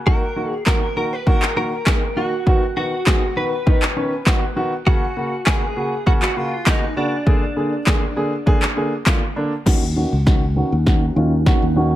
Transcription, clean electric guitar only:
0, 0, Header, 1, 2, 480
1, 0, Start_track
1, 0, Key_signature, -6, "minor"
1, 0, Tempo, 600000
1, 54, Time_signature, 4, 2, 24, 8
1, 9566, End_track
2, 0, Start_track
2, 0, Title_t, "Clean electric guitar"
2, 0, Program_c, 0, 27
2, 53, Note_on_c, 0, 70, 95
2, 397, Note_off_c, 0, 70, 0
2, 397, Note_on_c, 0, 68, 95
2, 501, Note_off_c, 0, 68, 0
2, 534, Note_on_c, 0, 70, 100
2, 766, Note_off_c, 0, 70, 0
2, 775, Note_on_c, 0, 70, 95
2, 904, Note_off_c, 0, 70, 0
2, 904, Note_on_c, 0, 71, 99
2, 1017, Note_off_c, 0, 71, 0
2, 1017, Note_on_c, 0, 70, 92
2, 1246, Note_off_c, 0, 70, 0
2, 1256, Note_on_c, 0, 70, 100
2, 1736, Note_on_c, 0, 66, 84
2, 1749, Note_off_c, 0, 70, 0
2, 2205, Note_off_c, 0, 66, 0
2, 2215, Note_on_c, 0, 66, 89
2, 2696, Note_on_c, 0, 71, 92
2, 2708, Note_off_c, 0, 66, 0
2, 3623, Note_off_c, 0, 71, 0
2, 3893, Note_on_c, 0, 66, 99
2, 4370, Note_off_c, 0, 66, 0
2, 4373, Note_on_c, 0, 68, 97
2, 4851, Note_off_c, 0, 68, 0
2, 4854, Note_on_c, 0, 66, 94
2, 4894, Note_off_c, 0, 66, 0
2, 4981, Note_on_c, 0, 66, 91
2, 5095, Note_off_c, 0, 66, 0
2, 5095, Note_on_c, 0, 65, 91
2, 5337, Note_on_c, 0, 63, 83
2, 5341, Note_off_c, 0, 65, 0
2, 5558, Note_off_c, 0, 63, 0
2, 5577, Note_on_c, 0, 62, 78
2, 7223, Note_off_c, 0, 62, 0
2, 9566, End_track
0, 0, End_of_file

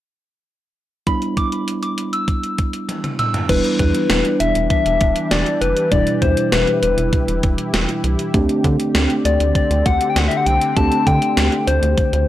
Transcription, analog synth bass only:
0, 0, Header, 1, 2, 480
1, 0, Start_track
1, 0, Key_signature, 1, "minor"
1, 0, Tempo, 606061
1, 846, Time_signature, 4, 2, 24, 8
1, 9727, End_track
2, 0, Start_track
2, 0, Title_t, "Analog synth bass"
2, 0, Program_c, 0, 38
2, 2766, Note_on_c, 0, 28, 102
2, 2864, Note_off_c, 0, 28, 0
2, 3005, Note_on_c, 0, 40, 104
2, 3103, Note_off_c, 0, 40, 0
2, 3245, Note_on_c, 0, 28, 102
2, 3343, Note_off_c, 0, 28, 0
2, 3486, Note_on_c, 0, 28, 102
2, 3584, Note_off_c, 0, 28, 0
2, 3606, Note_on_c, 0, 28, 97
2, 3703, Note_off_c, 0, 28, 0
2, 3845, Note_on_c, 0, 28, 96
2, 3943, Note_off_c, 0, 28, 0
2, 3968, Note_on_c, 0, 28, 94
2, 4065, Note_off_c, 0, 28, 0
2, 4206, Note_on_c, 0, 28, 102
2, 4304, Note_off_c, 0, 28, 0
2, 4445, Note_on_c, 0, 30, 91
2, 4543, Note_off_c, 0, 30, 0
2, 4686, Note_on_c, 0, 28, 119
2, 4784, Note_off_c, 0, 28, 0
2, 4925, Note_on_c, 0, 40, 98
2, 5023, Note_off_c, 0, 40, 0
2, 5166, Note_on_c, 0, 28, 102
2, 5264, Note_off_c, 0, 28, 0
2, 5406, Note_on_c, 0, 28, 97
2, 5504, Note_off_c, 0, 28, 0
2, 5526, Note_on_c, 0, 28, 97
2, 5624, Note_off_c, 0, 28, 0
2, 5766, Note_on_c, 0, 28, 94
2, 5864, Note_off_c, 0, 28, 0
2, 5888, Note_on_c, 0, 28, 100
2, 5985, Note_off_c, 0, 28, 0
2, 6126, Note_on_c, 0, 28, 102
2, 6224, Note_off_c, 0, 28, 0
2, 6366, Note_on_c, 0, 36, 86
2, 6464, Note_off_c, 0, 36, 0
2, 6607, Note_on_c, 0, 38, 105
2, 6704, Note_off_c, 0, 38, 0
2, 6846, Note_on_c, 0, 50, 107
2, 6943, Note_off_c, 0, 50, 0
2, 7086, Note_on_c, 0, 38, 102
2, 7184, Note_off_c, 0, 38, 0
2, 7326, Note_on_c, 0, 38, 104
2, 7424, Note_off_c, 0, 38, 0
2, 7446, Note_on_c, 0, 38, 92
2, 7544, Note_off_c, 0, 38, 0
2, 7685, Note_on_c, 0, 38, 92
2, 7783, Note_off_c, 0, 38, 0
2, 7809, Note_on_c, 0, 38, 99
2, 7905, Note_off_c, 0, 38, 0
2, 8045, Note_on_c, 0, 38, 102
2, 8143, Note_off_c, 0, 38, 0
2, 8285, Note_on_c, 0, 36, 92
2, 8383, Note_off_c, 0, 36, 0
2, 8527, Note_on_c, 0, 38, 110
2, 8624, Note_off_c, 0, 38, 0
2, 8765, Note_on_c, 0, 50, 100
2, 8863, Note_off_c, 0, 50, 0
2, 9006, Note_on_c, 0, 38, 102
2, 9103, Note_off_c, 0, 38, 0
2, 9245, Note_on_c, 0, 38, 99
2, 9343, Note_off_c, 0, 38, 0
2, 9366, Note_on_c, 0, 38, 98
2, 9464, Note_off_c, 0, 38, 0
2, 9606, Note_on_c, 0, 38, 100
2, 9704, Note_off_c, 0, 38, 0
2, 9727, End_track
0, 0, End_of_file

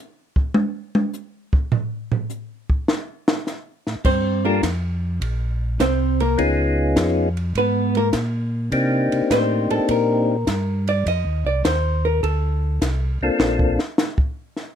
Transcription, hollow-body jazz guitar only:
0, 0, Header, 1, 2, 480
1, 0, Start_track
1, 0, Tempo, 584226
1, 1406, Time_signature, 4, 2, 24, 8
1, 12119, End_track
2, 0, Start_track
2, 0, Title_t, "Hollow-body jazz guitar"
2, 0, Program_c, 0, 26
2, 3332, Note_on_c, 0, 72, 86
2, 3337, Note_on_c, 0, 60, 65
2, 3650, Note_off_c, 0, 72, 0
2, 3652, Note_off_c, 0, 60, 0
2, 3654, Note_on_c, 0, 58, 67
2, 3658, Note_on_c, 0, 70, 77
2, 3802, Note_off_c, 0, 58, 0
2, 3802, Note_off_c, 0, 70, 0
2, 4772, Note_on_c, 0, 60, 76
2, 4772, Note_on_c, 0, 72, 76
2, 5088, Note_off_c, 0, 72, 0
2, 5090, Note_off_c, 0, 60, 0
2, 5100, Note_on_c, 0, 70, 87
2, 5106, Note_on_c, 0, 58, 75
2, 5244, Note_off_c, 0, 70, 0
2, 5247, Note_off_c, 0, 58, 0
2, 6225, Note_on_c, 0, 71, 104
2, 6231, Note_on_c, 0, 59, 82
2, 6536, Note_off_c, 0, 71, 0
2, 6539, Note_off_c, 0, 59, 0
2, 6549, Note_on_c, 0, 70, 103
2, 6553, Note_on_c, 0, 58, 76
2, 6636, Note_off_c, 0, 70, 0
2, 6638, Note_off_c, 0, 58, 0
2, 7657, Note_on_c, 0, 72, 80
2, 7972, Note_off_c, 0, 72, 0
2, 7978, Note_on_c, 0, 69, 78
2, 8123, Note_off_c, 0, 69, 0
2, 8143, Note_on_c, 0, 70, 85
2, 8911, Note_off_c, 0, 70, 0
2, 8945, Note_on_c, 0, 74, 93
2, 9086, Note_off_c, 0, 74, 0
2, 9103, Note_on_c, 0, 75, 105
2, 9414, Note_off_c, 0, 75, 0
2, 9420, Note_on_c, 0, 74, 90
2, 9563, Note_off_c, 0, 74, 0
2, 9569, Note_on_c, 0, 72, 78
2, 9887, Note_off_c, 0, 72, 0
2, 9900, Note_on_c, 0, 70, 74
2, 10043, Note_off_c, 0, 70, 0
2, 10049, Note_on_c, 0, 69, 86
2, 10898, Note_off_c, 0, 69, 0
2, 12119, End_track
0, 0, End_of_file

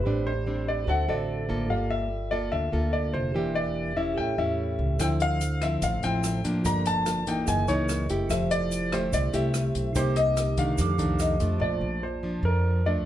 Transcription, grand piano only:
0, 0, Header, 1, 2, 480
1, 0, Start_track
1, 0, Key_signature, -1, "major"
1, 0, Tempo, 412939
1, 53, Time_signature, 4, 2, 24, 8
1, 15174, End_track
2, 0, Start_track
2, 0, Title_t, "Grand piano"
2, 0, Program_c, 0, 0
2, 0, Note_on_c, 0, 71, 71
2, 309, Note_on_c, 0, 72, 92
2, 314, Note_off_c, 0, 71, 0
2, 795, Note_off_c, 0, 72, 0
2, 795, Note_on_c, 0, 74, 77
2, 1008, Note_off_c, 0, 74, 0
2, 1037, Note_on_c, 0, 78, 95
2, 1271, Note_off_c, 0, 78, 0
2, 1274, Note_on_c, 0, 74, 70
2, 1977, Note_on_c, 0, 77, 80
2, 2004, Note_off_c, 0, 74, 0
2, 2214, Note_on_c, 0, 76, 91
2, 2222, Note_off_c, 0, 77, 0
2, 2685, Note_on_c, 0, 74, 86
2, 2707, Note_off_c, 0, 76, 0
2, 2926, Note_on_c, 0, 76, 91
2, 2935, Note_off_c, 0, 74, 0
2, 3404, Note_on_c, 0, 74, 85
2, 3423, Note_off_c, 0, 76, 0
2, 3644, Note_on_c, 0, 72, 87
2, 3655, Note_off_c, 0, 74, 0
2, 4131, Note_on_c, 0, 74, 93
2, 4142, Note_off_c, 0, 72, 0
2, 4611, Note_on_c, 0, 76, 91
2, 4625, Note_off_c, 0, 74, 0
2, 4853, Note_on_c, 0, 79, 83
2, 4858, Note_off_c, 0, 76, 0
2, 5096, Note_on_c, 0, 76, 83
2, 5099, Note_off_c, 0, 79, 0
2, 5821, Note_on_c, 0, 79, 92
2, 5835, Note_off_c, 0, 76, 0
2, 5880, Note_off_c, 0, 79, 0
2, 6066, Note_on_c, 0, 77, 119
2, 6541, Note_on_c, 0, 76, 87
2, 6553, Note_off_c, 0, 77, 0
2, 6782, Note_on_c, 0, 77, 93
2, 6783, Note_off_c, 0, 76, 0
2, 7018, Note_on_c, 0, 79, 100
2, 7024, Note_off_c, 0, 77, 0
2, 7740, Note_on_c, 0, 82, 103
2, 7757, Note_off_c, 0, 79, 0
2, 7983, Note_off_c, 0, 82, 0
2, 7986, Note_on_c, 0, 81, 111
2, 8467, Note_on_c, 0, 79, 83
2, 8473, Note_off_c, 0, 81, 0
2, 8695, Note_on_c, 0, 80, 94
2, 8706, Note_off_c, 0, 79, 0
2, 8931, Note_on_c, 0, 73, 86
2, 8940, Note_off_c, 0, 80, 0
2, 9378, Note_off_c, 0, 73, 0
2, 9654, Note_on_c, 0, 76, 85
2, 9893, Note_on_c, 0, 74, 108
2, 9901, Note_off_c, 0, 76, 0
2, 10386, Note_on_c, 0, 72, 90
2, 10388, Note_off_c, 0, 74, 0
2, 10623, Note_on_c, 0, 74, 93
2, 10627, Note_off_c, 0, 72, 0
2, 10842, Note_off_c, 0, 74, 0
2, 10869, Note_on_c, 0, 76, 78
2, 11582, Note_on_c, 0, 72, 90
2, 11603, Note_off_c, 0, 76, 0
2, 11817, Note_on_c, 0, 75, 108
2, 11825, Note_off_c, 0, 72, 0
2, 12308, Note_on_c, 0, 77, 85
2, 12310, Note_off_c, 0, 75, 0
2, 13020, Note_on_c, 0, 75, 73
2, 13215, Note_off_c, 0, 77, 0
2, 13500, Note_on_c, 0, 74, 84
2, 13511, Note_off_c, 0, 75, 0
2, 13986, Note_on_c, 0, 72, 72
2, 13992, Note_off_c, 0, 74, 0
2, 14427, Note_off_c, 0, 72, 0
2, 14472, Note_on_c, 0, 70, 84
2, 14951, Note_on_c, 0, 74, 81
2, 14957, Note_off_c, 0, 70, 0
2, 15174, Note_off_c, 0, 74, 0
2, 15174, End_track
0, 0, End_of_file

